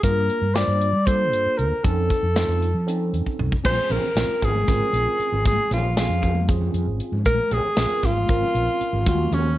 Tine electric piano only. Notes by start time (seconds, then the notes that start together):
0.04 A#3 D4 F4 A#4
0.55 A#3 D4 F4 C5
1.07 A#3 D4 F4 A4
1.83 C4 C#4 D#4 A4
2.35 C4 C#4 D#4 F4
2.87 C4 C#4 D#4 A4
3.64 C4 C#4 F4 G#4
4.16 C4 C#4 F4 A#4
4.68 C4 C#4 F4 A#4
5.98 C4 C#4 F4 G#4
6.48 C4 C#4 F4 G#4
7.78 C4 C#4 F4 A#4
8.29 C4 C#4 F4 A#4
9.06 A#3 C#4 F4 F#4